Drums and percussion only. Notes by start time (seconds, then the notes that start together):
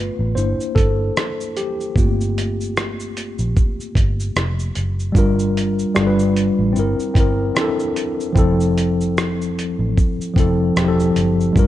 0.37 shaker
0.60 shaker
0.76 kick, closed hi-hat, shaker
1.17 cross-stick, shaker
1.41 shaker
1.57 closed hi-hat, shaker
1.81 shaker
1.96 kick, shaker
2.21 shaker
2.38 closed hi-hat, shaker
2.61 shaker
2.77 cross-stick, shaker
3.00 shaker
3.17 closed hi-hat, shaker
3.39 shaker
3.57 kick, shaker
3.80 shaker
3.95 kick, closed hi-hat, shaker
4.20 shaker
4.36 cross-stick, shaker
4.59 shaker
4.75 closed hi-hat, shaker
4.99 shaker
5.15 kick, shaker
5.39 shaker
5.57 closed hi-hat, shaker
5.79 shaker
5.96 cross-stick, shaker
6.19 shaker
6.36 closed hi-hat, shaker
6.76 shaker
7.00 shaker
7.15 kick, closed hi-hat, shaker
7.56 cross-stick, shaker
7.79 shaker
7.96 closed hi-hat, shaker
8.20 shaker
8.36 kick, shaker
8.60 shaker
8.78 closed hi-hat, shaker
9.01 shaker
9.17 cross-stick, shaker
9.42 shaker
9.59 closed hi-hat, shaker
9.98 kick, shaker
10.21 shaker
10.36 kick, closed hi-hat, shaker
10.76 cross-stick, shaker
11.00 shaker
11.16 closed hi-hat, shaker
11.40 shaker
11.56 kick, shaker